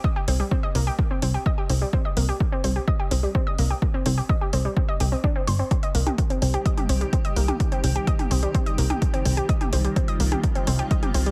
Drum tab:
HH |--o---o---o---o-|--o---o---o---o-|--o---o---o---o-|xxoxxxoxxxoxxxox|
T2 |----------------|----------------|----------------|---o-----o-----o|
BD |o---o---o---o---|o---o---o---o---|o---o---o---o---|o---o---o---o---|

HH |xxoxxxoxxxoxxxox|xxoxxxoxxxoxxxox|
T2 |-----o-----o----|-o-----o-----o--|
BD |o---o---o---o---|o---o---o---o---|